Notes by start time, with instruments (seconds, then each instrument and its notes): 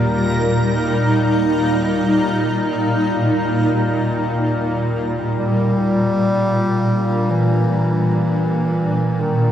Already playing: synth drone D#2 A#2, ambient pad A#2 G3 D#4, synth texture A#4
5.37 synth drone A#2, bass clarinet G3
6.47 ambient pad D4
7.30 bass clarinet E3
9.21 bass clarinet D#3